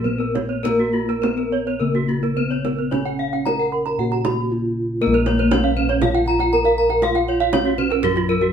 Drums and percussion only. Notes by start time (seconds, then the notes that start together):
0.06 kendang low
0.20 kendang slap
0.35 kendang high, kendang low
0.65 kendang high, kendang low
1.09 kendang slap
1.23 kendang high
1.38 kendang slap
1.95 kendang slap
2.09 kendang low
2.24 kendang slap
2.37 kendang low
2.52 kendang slap
2.65 kendang high, kendang low
2.92 kendang high, kendang low
3.06 kendang slap
3.33 kendang slap
3.46 kendang high
3.60 kendang slap
3.86 kendang slap
4.12 kendang slap
4.25 kendang high, kendang low
5.14 kendang slap
5.26 kendang high
5.39 kendang slap
5.51 kendang high, kendang low
5.77 kendang low
5.89 kendang slap
6.02 kendang high, kendang low
6.14 kendang slap
6.26 kendang low
6.39 kendang slap
6.64 kendang slap
6.89 kendang slap
7.02 kendang high
7.15 kendang slap
7.40 kendang slap
7.53 kendang high, kendang low
7.78 kendang low
7.90 kendang slap
8.03 kendang low
8.16 kendang slap
8.41 kendang slap